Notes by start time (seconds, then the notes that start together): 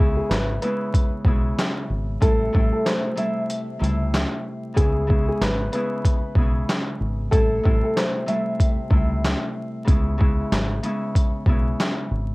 Already playing: C#2 C#3 G#3 G#4
0.00 B3 E4
0.17 G#4
0.29 G#1 B4, snare, clap, closed hi-hat
0.61 C#3 G#3 B3 E4 B4, closed hi-hat
0.94 kick, closed hi-hat
1.25 B1 C#3 G#3 B3 E4, kick
1.59 snare, clap, closed hi-hat
1.90 G#1
2.20 A1 C3 G3 A3 E4 A4, kick, closed hi-hat
2.53 A1 C3 G3 A3 E4, kick
2.73 A4
2.85 C5, snare, clap, closed hi-hat
3.16 C3 G3 A3 E4 E5, closed hi-hat
3.50 closed hi-hat
3.79 C#2 C3 G3 A3 E4
3.84 closed hi-hat
4.14 snare, clap, closed hi-hat
4.74 C#2 C#3 G#3 B3 E4 G#4, kick, closed hi-hat
5.07 C#3 G#3 B3 E4, kick
5.28 G#4
5.41 G#1 B4, snare, clap, closed hi-hat
5.72 C#3 G#3 B3 E4 B4, closed hi-hat
6.05 kick, closed hi-hat
6.35 B1 C#3 G#3 B3 E4, kick
6.69 snare, clap, closed hi-hat
7.00 G#1
7.31 A1 C3 G3 A3 E4 A4, kick, closed hi-hat
7.63 A1 C3 G3 A3 E4, kick
7.84 A4
7.96 C5, snare, clap, closed hi-hat
8.26 C3 G3 A3 E4 E5, closed hi-hat
8.60 kick, closed hi-hat
8.90 C#2 C3 G3 A3 E4, kick
9.24 snare, clap, closed hi-hat
9.85 C#2 C#3 G#3 B3 E4, kick, closed hi-hat
10.18 C#3 G#3 B3 E4, kick
10.52 G#1, snare, clap, closed hi-hat
10.83 C#3 G#3 B3 E4, closed hi-hat
11.15 kick, closed hi-hat
11.46 B1 C#3 G#3 B3 E4, kick
11.80 snare, clap, closed hi-hat
12.11 G#1